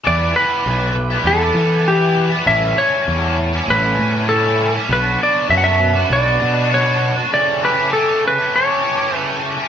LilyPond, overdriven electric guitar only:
\new Staff \with { instrumentName = "Overdriven electric guitar" } { \time 4/4 \key e \dorian \tempo 4 = 99 <e g b e'>8 <e g b e'>8 <e g b e'>16 <g b e'>8 <g b e'>8 <g b e'>16 <e g b e'>16 <g b e'>16 <e g b e'>16 <g b e'>8 <g b e'>16 | <a, e g cis' e'>8 <e g cis' e'>8 <a, e g cis' e'>16 <g cis' e'>8 <g cis' e'>8 <g cis' e'>16 <e g cis' e'>16 <g cis' e'>16 <a, e g cis' e'>16 <g cis' e'>8 <g cis' e'>16 | <b, fis b d' fis'>8 <fis b d' fis'>8 <b, fis b d' fis'>16 <b d' fis'>8 <b d' fis'>8 <b d' fis'>16 <fis b d' fis'>16 <b d' fis'>16 <b, fis b d' fis'>16 <b d' fis'>8 <b d' fis'>16 | <cis e a cis' g'>8 <e a cis' g'>8 <cis e a cis' g'>16 <a cis' g'>8 <a cis' g'>8 <a cis' g'>16 <e a cis' g'>16 <a cis' g'>16 <cis e a cis' g'>16 <a cis' g'>8 <a cis' g'>16 | }